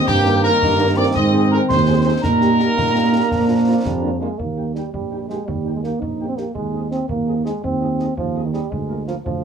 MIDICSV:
0, 0, Header, 1, 8, 480
1, 0, Start_track
1, 0, Key_signature, -3, "major"
1, 0, Tempo, 359928
1, 99, Time_signature, 6, 3, 24, 8
1, 12589, End_track
2, 0, Start_track
2, 0, Title_t, "Piccolo"
2, 0, Program_c, 0, 72
2, 107, Note_on_c, 0, 79, 102
2, 568, Note_off_c, 0, 79, 0
2, 576, Note_on_c, 0, 82, 103
2, 1292, Note_on_c, 0, 86, 96
2, 1312, Note_off_c, 0, 82, 0
2, 1531, Note_on_c, 0, 87, 83
2, 1551, Note_off_c, 0, 86, 0
2, 2007, Note_off_c, 0, 87, 0
2, 2015, Note_on_c, 0, 82, 89
2, 2095, Note_off_c, 0, 82, 0
2, 2246, Note_on_c, 0, 84, 92
2, 2696, Note_off_c, 0, 84, 0
2, 2717, Note_on_c, 0, 84, 86
2, 2797, Note_off_c, 0, 84, 0
2, 2953, Note_on_c, 0, 82, 97
2, 5548, Note_off_c, 0, 82, 0
2, 12589, End_track
3, 0, Start_track
3, 0, Title_t, "Trumpet section"
3, 0, Program_c, 1, 61
3, 89, Note_on_c, 1, 67, 127
3, 539, Note_off_c, 1, 67, 0
3, 575, Note_on_c, 1, 70, 127
3, 1245, Note_off_c, 1, 70, 0
3, 1305, Note_on_c, 1, 74, 111
3, 1411, Note_off_c, 1, 74, 0
3, 1538, Note_on_c, 1, 75, 113
3, 1983, Note_off_c, 1, 75, 0
3, 2025, Note_on_c, 1, 70, 109
3, 2131, Note_off_c, 1, 70, 0
3, 2270, Note_on_c, 1, 72, 99
3, 2709, Note_off_c, 1, 72, 0
3, 2750, Note_on_c, 1, 72, 98
3, 2965, Note_off_c, 1, 72, 0
3, 2988, Note_on_c, 1, 70, 119
3, 5565, Note_off_c, 1, 70, 0
3, 6101, Note_on_c, 1, 79, 35
3, 6185, Note_off_c, 1, 79, 0
3, 6344, Note_on_c, 1, 79, 41
3, 6428, Note_off_c, 1, 79, 0
3, 6821, Note_on_c, 1, 79, 36
3, 6905, Note_off_c, 1, 79, 0
3, 7077, Note_on_c, 1, 79, 39
3, 7158, Note_off_c, 1, 79, 0
3, 7548, Note_on_c, 1, 79, 37
3, 7631, Note_off_c, 1, 79, 0
3, 7786, Note_on_c, 1, 79, 41
3, 7869, Note_off_c, 1, 79, 0
3, 8274, Note_on_c, 1, 79, 37
3, 8356, Note_off_c, 1, 79, 0
3, 8507, Note_on_c, 1, 79, 39
3, 8591, Note_off_c, 1, 79, 0
3, 8991, Note_on_c, 1, 75, 37
3, 9073, Note_off_c, 1, 75, 0
3, 9225, Note_on_c, 1, 75, 44
3, 9309, Note_off_c, 1, 75, 0
3, 9700, Note_on_c, 1, 75, 35
3, 9786, Note_off_c, 1, 75, 0
3, 9930, Note_on_c, 1, 75, 38
3, 10017, Note_off_c, 1, 75, 0
3, 10410, Note_on_c, 1, 75, 40
3, 10498, Note_off_c, 1, 75, 0
3, 10653, Note_on_c, 1, 75, 44
3, 10740, Note_off_c, 1, 75, 0
3, 11140, Note_on_c, 1, 75, 41
3, 11226, Note_off_c, 1, 75, 0
3, 11385, Note_on_c, 1, 75, 39
3, 11470, Note_off_c, 1, 75, 0
3, 11853, Note_on_c, 1, 70, 44
3, 11941, Note_off_c, 1, 70, 0
3, 12093, Note_on_c, 1, 70, 50
3, 12181, Note_off_c, 1, 70, 0
3, 12589, End_track
4, 0, Start_track
4, 0, Title_t, "French horn section"
4, 0, Program_c, 2, 60
4, 349, Note_on_c, 2, 58, 75
4, 350, Note_on_c, 2, 70, 75
4, 351, Note_on_c, 2, 63, 76
4, 433, Note_off_c, 2, 58, 0
4, 434, Note_off_c, 2, 63, 0
4, 434, Note_off_c, 2, 70, 0
4, 595, Note_on_c, 2, 63, 79
4, 596, Note_on_c, 2, 58, 78
4, 599, Note_on_c, 2, 70, 76
4, 678, Note_off_c, 2, 58, 0
4, 678, Note_off_c, 2, 63, 0
4, 680, Note_off_c, 2, 70, 0
4, 1065, Note_on_c, 2, 70, 80
4, 1067, Note_on_c, 2, 63, 81
4, 1068, Note_on_c, 2, 58, 75
4, 1149, Note_off_c, 2, 70, 0
4, 1151, Note_off_c, 2, 58, 0
4, 1151, Note_off_c, 2, 63, 0
4, 1309, Note_on_c, 2, 63, 75
4, 1310, Note_on_c, 2, 58, 78
4, 1311, Note_on_c, 2, 70, 77
4, 1393, Note_off_c, 2, 58, 0
4, 1393, Note_off_c, 2, 63, 0
4, 1394, Note_off_c, 2, 70, 0
4, 1784, Note_on_c, 2, 63, 64
4, 1786, Note_on_c, 2, 60, 74
4, 1787, Note_on_c, 2, 68, 68
4, 1869, Note_off_c, 2, 63, 0
4, 1870, Note_off_c, 2, 60, 0
4, 1871, Note_off_c, 2, 68, 0
4, 2029, Note_on_c, 2, 60, 73
4, 2029, Note_on_c, 2, 63, 72
4, 2030, Note_on_c, 2, 68, 71
4, 2112, Note_off_c, 2, 60, 0
4, 2112, Note_off_c, 2, 63, 0
4, 2113, Note_off_c, 2, 68, 0
4, 2505, Note_on_c, 2, 60, 67
4, 2508, Note_on_c, 2, 63, 70
4, 2510, Note_on_c, 2, 68, 73
4, 2589, Note_off_c, 2, 60, 0
4, 2591, Note_off_c, 2, 63, 0
4, 2593, Note_off_c, 2, 68, 0
4, 2747, Note_on_c, 2, 68, 68
4, 2751, Note_on_c, 2, 60, 70
4, 2752, Note_on_c, 2, 63, 66
4, 2830, Note_off_c, 2, 68, 0
4, 2833, Note_off_c, 2, 60, 0
4, 2834, Note_off_c, 2, 63, 0
4, 3216, Note_on_c, 2, 67, 64
4, 3218, Note_on_c, 2, 58, 64
4, 3218, Note_on_c, 2, 63, 63
4, 3302, Note_off_c, 2, 67, 0
4, 3303, Note_off_c, 2, 58, 0
4, 3303, Note_off_c, 2, 63, 0
4, 3458, Note_on_c, 2, 58, 62
4, 3461, Note_on_c, 2, 67, 64
4, 3463, Note_on_c, 2, 63, 65
4, 3543, Note_off_c, 2, 58, 0
4, 3546, Note_off_c, 2, 67, 0
4, 3547, Note_off_c, 2, 63, 0
4, 3935, Note_on_c, 2, 63, 74
4, 3937, Note_on_c, 2, 58, 65
4, 3938, Note_on_c, 2, 67, 68
4, 4021, Note_off_c, 2, 63, 0
4, 4022, Note_off_c, 2, 58, 0
4, 4023, Note_off_c, 2, 67, 0
4, 4176, Note_on_c, 2, 58, 66
4, 4177, Note_on_c, 2, 63, 65
4, 4177, Note_on_c, 2, 67, 61
4, 4262, Note_off_c, 2, 58, 0
4, 4262, Note_off_c, 2, 63, 0
4, 4262, Note_off_c, 2, 67, 0
4, 4651, Note_on_c, 2, 62, 55
4, 4651, Note_on_c, 2, 65, 61
4, 4653, Note_on_c, 2, 58, 57
4, 4737, Note_off_c, 2, 62, 0
4, 4737, Note_off_c, 2, 65, 0
4, 4739, Note_off_c, 2, 58, 0
4, 4893, Note_on_c, 2, 62, 65
4, 4894, Note_on_c, 2, 58, 64
4, 4895, Note_on_c, 2, 65, 64
4, 4979, Note_off_c, 2, 62, 0
4, 4980, Note_off_c, 2, 58, 0
4, 4981, Note_off_c, 2, 65, 0
4, 5375, Note_on_c, 2, 62, 65
4, 5375, Note_on_c, 2, 65, 65
4, 5376, Note_on_c, 2, 58, 60
4, 5461, Note_off_c, 2, 58, 0
4, 5461, Note_off_c, 2, 62, 0
4, 5461, Note_off_c, 2, 65, 0
4, 5611, Note_on_c, 2, 62, 64
4, 5612, Note_on_c, 2, 58, 62
4, 5612, Note_on_c, 2, 65, 60
4, 5697, Note_off_c, 2, 62, 0
4, 5698, Note_off_c, 2, 58, 0
4, 5698, Note_off_c, 2, 65, 0
4, 6094, Note_on_c, 2, 58, 34
4, 6096, Note_on_c, 2, 63, 34
4, 6096, Note_on_c, 2, 67, 32
4, 6180, Note_off_c, 2, 58, 0
4, 6181, Note_off_c, 2, 67, 0
4, 6182, Note_off_c, 2, 63, 0
4, 6341, Note_on_c, 2, 63, 36
4, 6343, Note_on_c, 2, 67, 35
4, 6344, Note_on_c, 2, 58, 37
4, 6426, Note_off_c, 2, 63, 0
4, 6427, Note_off_c, 2, 67, 0
4, 6428, Note_off_c, 2, 58, 0
4, 6821, Note_on_c, 2, 58, 38
4, 6821, Note_on_c, 2, 67, 41
4, 6825, Note_on_c, 2, 63, 41
4, 6905, Note_off_c, 2, 58, 0
4, 6905, Note_off_c, 2, 67, 0
4, 6908, Note_off_c, 2, 63, 0
4, 7068, Note_on_c, 2, 58, 38
4, 7069, Note_on_c, 2, 67, 41
4, 7071, Note_on_c, 2, 63, 37
4, 7151, Note_off_c, 2, 58, 0
4, 7152, Note_off_c, 2, 67, 0
4, 7153, Note_off_c, 2, 63, 0
4, 7540, Note_on_c, 2, 67, 36
4, 7541, Note_on_c, 2, 58, 34
4, 7541, Note_on_c, 2, 63, 39
4, 7625, Note_off_c, 2, 63, 0
4, 7625, Note_off_c, 2, 67, 0
4, 7626, Note_off_c, 2, 58, 0
4, 7787, Note_on_c, 2, 67, 38
4, 7789, Note_on_c, 2, 63, 37
4, 7790, Note_on_c, 2, 58, 37
4, 7871, Note_off_c, 2, 67, 0
4, 7872, Note_off_c, 2, 58, 0
4, 7872, Note_off_c, 2, 63, 0
4, 8268, Note_on_c, 2, 58, 41
4, 8268, Note_on_c, 2, 63, 38
4, 8268, Note_on_c, 2, 67, 40
4, 8351, Note_off_c, 2, 58, 0
4, 8351, Note_off_c, 2, 63, 0
4, 8352, Note_off_c, 2, 67, 0
4, 8503, Note_on_c, 2, 58, 38
4, 8503, Note_on_c, 2, 63, 37
4, 8503, Note_on_c, 2, 67, 41
4, 8587, Note_off_c, 2, 58, 0
4, 8587, Note_off_c, 2, 67, 0
4, 8588, Note_off_c, 2, 63, 0
4, 8986, Note_on_c, 2, 63, 37
4, 8989, Note_on_c, 2, 60, 39
4, 8989, Note_on_c, 2, 68, 37
4, 9070, Note_off_c, 2, 63, 0
4, 9072, Note_off_c, 2, 60, 0
4, 9072, Note_off_c, 2, 68, 0
4, 9221, Note_on_c, 2, 63, 42
4, 9221, Note_on_c, 2, 68, 39
4, 9223, Note_on_c, 2, 60, 41
4, 9306, Note_off_c, 2, 63, 0
4, 9306, Note_off_c, 2, 68, 0
4, 9308, Note_off_c, 2, 60, 0
4, 9700, Note_on_c, 2, 68, 42
4, 9703, Note_on_c, 2, 63, 43
4, 9704, Note_on_c, 2, 60, 43
4, 9786, Note_off_c, 2, 68, 0
4, 9787, Note_off_c, 2, 63, 0
4, 9789, Note_off_c, 2, 60, 0
4, 9928, Note_on_c, 2, 63, 41
4, 9931, Note_on_c, 2, 60, 43
4, 9933, Note_on_c, 2, 68, 41
4, 10017, Note_off_c, 2, 63, 0
4, 10018, Note_off_c, 2, 60, 0
4, 10020, Note_off_c, 2, 68, 0
4, 10414, Note_on_c, 2, 63, 36
4, 10415, Note_on_c, 2, 60, 39
4, 10415, Note_on_c, 2, 68, 40
4, 10501, Note_off_c, 2, 63, 0
4, 10502, Note_off_c, 2, 60, 0
4, 10502, Note_off_c, 2, 68, 0
4, 10656, Note_on_c, 2, 60, 44
4, 10660, Note_on_c, 2, 68, 42
4, 10662, Note_on_c, 2, 63, 40
4, 10743, Note_off_c, 2, 60, 0
4, 10745, Note_off_c, 2, 68, 0
4, 10747, Note_off_c, 2, 63, 0
4, 11140, Note_on_c, 2, 68, 45
4, 11141, Note_on_c, 2, 60, 47
4, 11144, Note_on_c, 2, 63, 47
4, 11226, Note_off_c, 2, 68, 0
4, 11227, Note_off_c, 2, 60, 0
4, 11229, Note_off_c, 2, 63, 0
4, 11376, Note_on_c, 2, 68, 44
4, 11379, Note_on_c, 2, 60, 44
4, 11380, Note_on_c, 2, 63, 45
4, 11463, Note_off_c, 2, 68, 0
4, 11466, Note_off_c, 2, 60, 0
4, 11466, Note_off_c, 2, 63, 0
4, 11865, Note_on_c, 2, 65, 39
4, 11866, Note_on_c, 2, 58, 42
4, 11950, Note_off_c, 2, 65, 0
4, 11951, Note_off_c, 2, 58, 0
4, 12110, Note_on_c, 2, 65, 44
4, 12112, Note_off_c, 2, 65, 0
4, 12112, Note_on_c, 2, 65, 45
4, 12113, Note_on_c, 2, 58, 44
4, 12196, Note_off_c, 2, 58, 0
4, 12196, Note_off_c, 2, 65, 0
4, 12589, End_track
5, 0, Start_track
5, 0, Title_t, "Trombone section"
5, 0, Program_c, 3, 61
5, 102, Note_on_c, 3, 51, 82
5, 106, Note_on_c, 3, 58, 88
5, 1539, Note_off_c, 3, 58, 0
5, 1546, Note_on_c, 3, 60, 78
5, 2922, Note_off_c, 3, 51, 0
5, 2925, Note_off_c, 3, 60, 0
5, 2963, Note_on_c, 3, 63, 72
5, 2970, Note_on_c, 3, 55, 73
5, 4402, Note_on_c, 3, 62, 66
5, 4405, Note_on_c, 3, 53, 73
5, 4407, Note_off_c, 3, 63, 0
5, 4410, Note_off_c, 3, 55, 0
5, 5607, Note_off_c, 3, 62, 0
5, 5608, Note_off_c, 3, 53, 0
5, 12589, End_track
6, 0, Start_track
6, 0, Title_t, "Euphonium"
6, 0, Program_c, 4, 58
6, 0, Note_on_c, 4, 60, 124
6, 767, Note_off_c, 4, 60, 0
6, 822, Note_on_c, 4, 63, 97
6, 929, Note_off_c, 4, 63, 0
6, 1062, Note_on_c, 4, 62, 87
6, 1169, Note_off_c, 4, 62, 0
6, 1290, Note_on_c, 4, 60, 95
6, 2545, Note_off_c, 4, 60, 0
6, 2975, Note_on_c, 4, 58, 91
6, 5079, Note_off_c, 4, 58, 0
6, 5128, Note_on_c, 4, 55, 72
6, 5498, Note_on_c, 4, 53, 58
6, 5518, Note_off_c, 4, 55, 0
6, 5599, Note_on_c, 4, 56, 69
6, 5619, Note_off_c, 4, 53, 0
6, 5845, Note_on_c, 4, 58, 59
6, 5865, Note_off_c, 4, 56, 0
6, 6312, Note_off_c, 4, 58, 0
6, 6320, Note_on_c, 4, 55, 54
6, 6549, Note_off_c, 4, 55, 0
6, 6572, Note_on_c, 4, 55, 58
6, 7019, Note_off_c, 4, 55, 0
6, 7047, Note_on_c, 4, 56, 57
6, 7296, Note_on_c, 4, 55, 59
6, 7316, Note_off_c, 4, 56, 0
6, 7650, Note_off_c, 4, 55, 0
6, 7658, Note_on_c, 4, 56, 52
6, 7767, Note_off_c, 4, 56, 0
6, 7775, Note_on_c, 4, 58, 60
6, 8011, Note_on_c, 4, 63, 59
6, 8031, Note_off_c, 4, 58, 0
6, 8369, Note_off_c, 4, 63, 0
6, 8377, Note_on_c, 4, 60, 59
6, 8502, Note_on_c, 4, 58, 52
6, 8522, Note_off_c, 4, 60, 0
6, 8721, Note_off_c, 4, 58, 0
6, 8729, Note_on_c, 4, 56, 67
6, 9178, Note_off_c, 4, 56, 0
6, 9216, Note_on_c, 4, 60, 65
6, 9439, Note_off_c, 4, 60, 0
6, 9455, Note_on_c, 4, 58, 62
6, 9902, Note_off_c, 4, 58, 0
6, 9941, Note_on_c, 4, 56, 60
6, 10162, Note_off_c, 4, 56, 0
6, 10188, Note_on_c, 4, 60, 74
6, 10853, Note_off_c, 4, 60, 0
6, 10900, Note_on_c, 4, 53, 70
6, 11268, Note_on_c, 4, 51, 48
6, 11288, Note_off_c, 4, 53, 0
6, 11368, Note_off_c, 4, 51, 0
6, 11376, Note_on_c, 4, 55, 65
6, 11608, Note_on_c, 4, 56, 62
6, 11628, Note_off_c, 4, 55, 0
6, 12088, Note_off_c, 4, 56, 0
6, 12096, Note_on_c, 4, 53, 65
6, 12205, Note_off_c, 4, 53, 0
6, 12323, Note_on_c, 4, 53, 63
6, 12589, Note_off_c, 4, 53, 0
6, 12589, End_track
7, 0, Start_track
7, 0, Title_t, "Tuba"
7, 0, Program_c, 5, 58
7, 100, Note_on_c, 5, 43, 98
7, 643, Note_off_c, 5, 43, 0
7, 822, Note_on_c, 5, 43, 92
7, 1418, Note_off_c, 5, 43, 0
7, 1545, Note_on_c, 5, 44, 94
7, 2139, Note_off_c, 5, 44, 0
7, 2263, Note_on_c, 5, 39, 94
7, 2858, Note_off_c, 5, 39, 0
7, 2984, Note_on_c, 5, 46, 85
7, 3578, Note_off_c, 5, 46, 0
7, 3700, Note_on_c, 5, 46, 73
7, 4296, Note_off_c, 5, 46, 0
7, 4417, Note_on_c, 5, 46, 79
7, 5014, Note_off_c, 5, 46, 0
7, 5140, Note_on_c, 5, 41, 78
7, 5735, Note_off_c, 5, 41, 0
7, 5859, Note_on_c, 5, 39, 52
7, 6455, Note_off_c, 5, 39, 0
7, 6586, Note_on_c, 5, 34, 46
7, 7179, Note_off_c, 5, 34, 0
7, 7305, Note_on_c, 5, 39, 47
7, 7899, Note_off_c, 5, 39, 0
7, 8021, Note_on_c, 5, 34, 49
7, 8617, Note_off_c, 5, 34, 0
7, 8737, Note_on_c, 5, 39, 49
7, 9336, Note_off_c, 5, 39, 0
7, 9453, Note_on_c, 5, 39, 48
7, 10002, Note_off_c, 5, 39, 0
7, 10183, Note_on_c, 5, 39, 57
7, 10780, Note_off_c, 5, 39, 0
7, 10898, Note_on_c, 5, 39, 54
7, 11498, Note_off_c, 5, 39, 0
7, 11616, Note_on_c, 5, 38, 57
7, 12218, Note_off_c, 5, 38, 0
7, 12343, Note_on_c, 5, 38, 58
7, 12589, Note_off_c, 5, 38, 0
7, 12589, End_track
8, 0, Start_track
8, 0, Title_t, "Drums"
8, 101, Note_on_c, 9, 35, 83
8, 101, Note_on_c, 9, 38, 79
8, 101, Note_on_c, 9, 49, 37
8, 235, Note_off_c, 9, 35, 0
8, 235, Note_off_c, 9, 38, 0
8, 235, Note_off_c, 9, 49, 0
8, 343, Note_on_c, 9, 38, 57
8, 476, Note_off_c, 9, 38, 0
8, 584, Note_on_c, 9, 38, 51
8, 718, Note_off_c, 9, 38, 0
8, 822, Note_on_c, 9, 35, 83
8, 822, Note_on_c, 9, 38, 73
8, 955, Note_off_c, 9, 35, 0
8, 955, Note_off_c, 9, 38, 0
8, 1538, Note_on_c, 9, 35, 85
8, 1538, Note_on_c, 9, 38, 81
8, 1671, Note_off_c, 9, 35, 0
8, 1671, Note_off_c, 9, 38, 0
8, 2260, Note_on_c, 9, 35, 87
8, 2260, Note_on_c, 9, 38, 66
8, 2393, Note_off_c, 9, 35, 0
8, 2393, Note_off_c, 9, 38, 0
8, 2981, Note_on_c, 9, 35, 90
8, 2981, Note_on_c, 9, 38, 82
8, 3114, Note_off_c, 9, 35, 0
8, 3114, Note_off_c, 9, 38, 0
8, 3217, Note_on_c, 9, 38, 58
8, 3351, Note_off_c, 9, 38, 0
8, 3462, Note_on_c, 9, 38, 52
8, 3595, Note_off_c, 9, 38, 0
8, 3699, Note_on_c, 9, 35, 84
8, 3699, Note_on_c, 9, 38, 72
8, 3833, Note_off_c, 9, 35, 0
8, 3833, Note_off_c, 9, 38, 0
8, 4418, Note_on_c, 9, 35, 77
8, 4418, Note_on_c, 9, 38, 62
8, 4551, Note_off_c, 9, 35, 0
8, 4551, Note_off_c, 9, 38, 0
8, 5138, Note_on_c, 9, 35, 81
8, 5138, Note_on_c, 9, 38, 76
8, 5272, Note_off_c, 9, 35, 0
8, 5272, Note_off_c, 9, 38, 0
8, 5859, Note_on_c, 9, 35, 62
8, 5993, Note_off_c, 9, 35, 0
8, 6341, Note_on_c, 9, 38, 28
8, 6475, Note_off_c, 9, 38, 0
8, 6585, Note_on_c, 9, 35, 62
8, 6718, Note_off_c, 9, 35, 0
8, 7066, Note_on_c, 9, 38, 31
8, 7200, Note_off_c, 9, 38, 0
8, 7305, Note_on_c, 9, 35, 64
8, 7439, Note_off_c, 9, 35, 0
8, 7788, Note_on_c, 9, 38, 30
8, 7921, Note_off_c, 9, 38, 0
8, 8026, Note_on_c, 9, 35, 60
8, 8160, Note_off_c, 9, 35, 0
8, 8502, Note_on_c, 9, 38, 30
8, 8635, Note_off_c, 9, 38, 0
8, 8736, Note_on_c, 9, 35, 56
8, 8869, Note_off_c, 9, 35, 0
8, 9222, Note_on_c, 9, 38, 30
8, 9355, Note_off_c, 9, 38, 0
8, 9456, Note_on_c, 9, 35, 63
8, 9590, Note_off_c, 9, 35, 0
8, 9947, Note_on_c, 9, 38, 35
8, 10080, Note_off_c, 9, 38, 0
8, 10186, Note_on_c, 9, 35, 60
8, 10319, Note_off_c, 9, 35, 0
8, 10662, Note_on_c, 9, 38, 28
8, 10795, Note_off_c, 9, 38, 0
8, 10900, Note_on_c, 9, 35, 62
8, 11033, Note_off_c, 9, 35, 0
8, 11384, Note_on_c, 9, 38, 30
8, 11518, Note_off_c, 9, 38, 0
8, 11626, Note_on_c, 9, 35, 63
8, 11759, Note_off_c, 9, 35, 0
8, 12103, Note_on_c, 9, 38, 31
8, 12236, Note_off_c, 9, 38, 0
8, 12347, Note_on_c, 9, 35, 64
8, 12481, Note_off_c, 9, 35, 0
8, 12589, End_track
0, 0, End_of_file